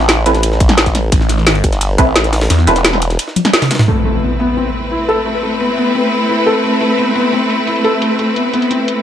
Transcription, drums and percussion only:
0.00 snare
0.09 snare, closed hi-hat, ride
0.26 closed hi-hat, ride
0.35 snare, closed hi-hat
0.43 closed hi-hat, ride
0.52 snare
0.60 kick, closed hi-hat, ride
0.69 snare, closed hi-hat
0.78 snare, closed hi-hat, ride
0.86 kick, snare, closed hi-hat
0.95 snare, closed hi-hat, ride
1.12 kick, closed hi-hat, ride
1.21 snare
1.29 snare, closed hi-hat, ride
1.38 snare
1.47 snare, closed hi-hat, open hi-hat
1.55 ride
1.64 kick, closed hi-hat, ride
1.72 snare, closed hi-hat
1.81 closed hi-hat, ride
1.98 kick, closed hi-hat, ride
2.16 snare, closed hi-hat, ride
2.24 snare, closed hi-hat
2.33 snare, closed hi-hat, open hi-hat
2.41 snare, open hi-hat
2.50 snare, closed hi-hat, open hi-hat
2.59 snare
2.67 snare, closed hi-hat, ride
2.76 snare, closed hi-hat
2.85 snare, closed hi-hat, ride
2.93 snare
3.02 closed hi-hat, ride
3.10 snare, closed hi-hat
3.19 closed hi-hat, ride
3.28 snare
3.36 closed hi-hat, high tom, ride
3.45 snare, closed hi-hat
3.53 snare, closed hi-hat, open hi-hat
3.62 snare, closed hi-hat, open hi-hat, mid tom
3.71 snare, closed hi-hat, open hi-hat
3.75 snare, open hi-hat
3.79 snare, mid tom, open hi-hat
3.88 closed hi-hat
4.05 closed hi-hat
4.22 closed hi-hat
4.40 closed hi-hat
4.48 closed hi-hat
4.57 closed hi-hat
4.74 closed hi-hat
4.91 closed hi-hat
5.00 closed hi-hat
5.09 closed hi-hat
5.26 closed hi-hat
5.43 closed hi-hat
5.60 closed hi-hat
5.78 closed hi-hat
5.86 closed hi-hat
5.95 closed hi-hat
6.12 closed hi-hat
6.29 closed hi-hat
6.38 closed hi-hat
6.47 closed hi-hat
6.64 closed hi-hat
6.81 closed hi-hat
6.98 closed hi-hat
7.16 closed hi-hat
7.24 closed hi-hat
7.33 closed hi-hat
7.50 closed hi-hat
7.67 closed hi-hat
7.76 closed hi-hat
7.85 closed hi-hat
8.02 closed hi-hat
8.19 closed hi-hat
8.36 closed hi-hat
8.54 closed hi-hat
8.62 closed hi-hat
8.71 closed hi-hat
8.88 closed hi-hat

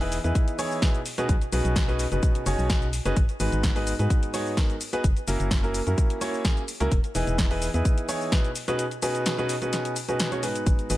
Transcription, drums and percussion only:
0.01 open hi-hat, cabasa
0.12 open hi-hat, cabasa
0.24 closed hi-hat, cabasa
0.35 kick, closed hi-hat, cabasa
0.48 closed hi-hat, cabasa
0.59 open hi-hat, cabasa
0.71 cabasa
0.82 kick, snare, closed hi-hat, cabasa
0.95 closed hi-hat, cabasa
1.06 open hi-hat, cabasa
1.18 closed hi-hat, cabasa
1.29 kick, closed hi-hat, cabasa
1.42 closed hi-hat, cabasa
1.52 open hi-hat, cabasa
1.65 closed hi-hat, cabasa
1.76 kick, snare, closed hi-hat, cabasa
1.88 cabasa
1.99 open hi-hat, cabasa
2.12 closed hi-hat, cabasa
2.23 kick, closed hi-hat, cabasa
2.35 closed hi-hat, cabasa
2.46 open hi-hat, cabasa
2.59 cabasa
2.70 kick, snare, closed hi-hat, cabasa
2.82 closed hi-hat, cabasa
2.93 open hi-hat, cabasa
3.06 closed hi-hat, cabasa
3.16 kick, closed hi-hat, cabasa
3.29 closed hi-hat, cabasa
3.40 open hi-hat, cabasa
3.52 closed hi-hat, cabasa
3.63 kick, snare, closed hi-hat, cabasa
3.76 open hi-hat, cabasa
3.87 open hi-hat, cabasa
3.99 closed hi-hat, cabasa
4.10 kick, closed hi-hat, cabasa
4.23 closed hi-hat, cabasa
4.34 open hi-hat, cabasa
4.46 cabasa
4.57 kick, snare, closed hi-hat, cabasa
4.70 closed hi-hat, cabasa
4.81 open hi-hat, cabasa
4.93 closed hi-hat, cabasa
5.04 kick, closed hi-hat, cabasa
5.17 closed hi-hat, cabasa
5.28 open hi-hat, cabasa
5.40 closed hi-hat, cabasa
5.51 kick, snare, closed hi-hat, cabasa
5.63 cabasa
5.74 open hi-hat, cabasa
5.87 closed hi-hat, cabasa
5.98 kick, closed hi-hat, cabasa
6.10 closed hi-hat, cabasa
6.21 open hi-hat, cabasa
6.34 cabasa
6.45 kick, snare, closed hi-hat, cabasa
6.57 closed hi-hat, cabasa
6.68 open hi-hat, cabasa
6.81 closed hi-hat, cabasa
6.91 kick, closed hi-hat, cabasa
7.04 closed hi-hat, cabasa
7.15 open hi-hat, cabasa
7.27 closed hi-hat, cabasa
7.38 kick, snare, closed hi-hat, cabasa
7.51 open hi-hat, cabasa
7.62 open hi-hat, cabasa
7.74 closed hi-hat, cabasa
7.85 kick, closed hi-hat, cabasa
7.98 closed hi-hat, cabasa
8.09 open hi-hat, cabasa
8.21 cabasa
8.32 kick, snare, closed hi-hat, cabasa
8.45 closed hi-hat, cabasa
8.56 open hi-hat, cabasa
8.68 closed hi-hat, cabasa
8.79 closed hi-hat, cabasa
8.91 closed hi-hat, cabasa
9.02 open hi-hat, cabasa
9.15 closed hi-hat, cabasa
9.26 snare, closed hi-hat, cabasa
9.38 cabasa
9.49 open hi-hat, cabasa
9.62 closed hi-hat, cabasa
9.73 snare, closed hi-hat, cabasa
9.85 closed hi-hat, cabasa
9.96 open hi-hat, cabasa
10.09 closed hi-hat, cabasa
10.20 snare, closed hi-hat, cabasa
10.32 closed hi-hat, cabasa
10.43 open hi-hat, cabasa
10.55 closed hi-hat, cabasa
10.66 kick, closed hi-hat, cabasa
10.79 closed hi-hat, cabasa
10.90 open hi-hat, cabasa

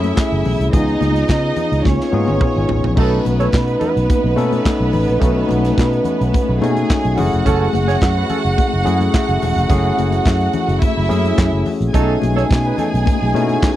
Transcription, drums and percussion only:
0.04 closed hi-hat, high conga
0.16 kick, snare, clap, closed hi-hat, muted conga
0.45 open hi-hat, low conga
0.61 closed hi-hat
0.73 kick, closed hi-hat, low conga
0.88 closed hi-hat
1.01 closed hi-hat, muted conga, high conga
1.15 closed hi-hat, high conga
1.28 kick, snare, clap, closed hi-hat
1.56 closed hi-hat, muted conga, low conga
1.73 closed hi-hat
1.84 kick, snare, muted conga, high conga
2.01 snare
2.13 muted conga, high conga
2.28 high tom, high conga
2.41 kick, mid tom, muted conga
2.69 floor tom, low conga
2.84 floor tom
2.97 kick, crash, muted conga
3.25 closed hi-hat, muted conga, high conga
3.40 closed hi-hat, high conga
3.52 kick, snare, clap, closed hi-hat, muted conga
3.68 closed hi-hat
3.81 closed hi-hat, low conga
3.97 closed hi-hat
4.10 kick, closed hi-hat, high conga
4.38 closed hi-hat, muted conga, high conga
4.52 closed hi-hat, high conga
4.65 kick, snare, clap, closed hi-hat, muted conga
4.93 open hi-hat, low conga
5.09 closed hi-hat
5.21 kick, closed hi-hat, muted conga
5.49 closed hi-hat, muted conga, high conga
5.63 snare, closed hi-hat, high conga
5.77 kick, snare, clap, closed hi-hat, muted conga
5.93 closed hi-hat
6.04 closed hi-hat, low conga
6.21 closed hi-hat
6.33 kick, closed hi-hat, high conga
6.62 closed hi-hat, muted conga, high conga
6.77 closed hi-hat, high conga
6.90 kick, snare, clap, closed hi-hat
7.05 closed hi-hat
7.18 open hi-hat, low conga
7.33 closed hi-hat
7.46 kick, closed hi-hat, muted conga
7.73 closed hi-hat, muted conga, high conga
7.88 snare, closed hi-hat, high conga
8.01 kick, snare, clap, closed hi-hat
8.30 closed hi-hat, muted conga, low conga
8.46 closed hi-hat
8.58 kick, closed hi-hat, high conga
8.86 closed hi-hat, muted conga, high conga
9.01 closed hi-hat, high conga
9.14 kick, snare, clap, closed hi-hat, muted conga
9.29 closed hi-hat
9.42 open hi-hat, low conga
9.58 closed hi-hat
9.70 kick, closed hi-hat
9.98 closed hi-hat, muted conga, high conga
10.12 closed hi-hat, high conga
10.25 kick, snare, clap, closed hi-hat
10.41 closed hi-hat
10.53 closed hi-hat, muted conga, low conga
10.69 closed hi-hat
10.82 kick, closed hi-hat, muted conga, high conga
11.10 closed hi-hat, muted conga, high conga
11.24 closed hi-hat, high conga
11.38 kick, snare, clap, closed hi-hat
11.66 open hi-hat, low conga
11.82 closed hi-hat
11.94 kick, closed hi-hat, muted conga
12.22 closed hi-hat, high conga
12.36 closed hi-hat, high conga
12.50 kick, snare, clap, closed hi-hat, muted conga
12.78 closed hi-hat, muted conga, low conga
12.95 closed hi-hat
13.06 kick, closed hi-hat, muted conga, high conga
13.34 closed hi-hat, muted conga, high conga
13.49 closed hi-hat, high conga
13.62 kick, snare, clap, closed hi-hat

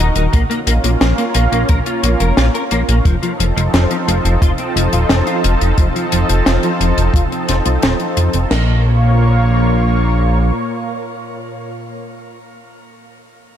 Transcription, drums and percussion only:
0.15 closed hi-hat
0.33 kick, closed hi-hat
0.51 closed hi-hat
0.67 closed hi-hat
0.84 closed hi-hat
1.01 snare, closed hi-hat
1.18 closed hi-hat
1.34 closed hi-hat
1.53 closed hi-hat
1.69 kick, closed hi-hat
1.86 closed hi-hat
2.03 closed hi-hat
2.20 closed hi-hat
2.37 snare, closed hi-hat
2.55 closed hi-hat
2.71 closed hi-hat
2.89 closed hi-hat
3.05 kick, closed hi-hat
3.23 closed hi-hat
3.40 closed hi-hat
3.58 closed hi-hat
3.74 snare, closed hi-hat
3.91 closed hi-hat
4.08 closed hi-hat
4.25 closed hi-hat
4.42 kick, closed hi-hat
4.58 closed hi-hat
4.77 closed hi-hat
4.93 closed hi-hat
5.09 snare, closed hi-hat
5.27 closed hi-hat
5.44 closed hi-hat
5.61 closed hi-hat
5.78 kick, closed hi-hat
5.96 closed hi-hat
6.12 closed hi-hat
6.29 closed hi-hat
6.46 snare, closed hi-hat
6.63 closed hi-hat
6.81 closed hi-hat
6.98 closed hi-hat
7.14 kick, closed hi-hat
7.32 closed hi-hat
7.49 snare, closed hi-hat
7.65 closed hi-hat
7.82 snare, closed hi-hat
8.00 closed hi-hat
8.17 closed hi-hat
8.33 closed hi-hat
8.51 snare, crash

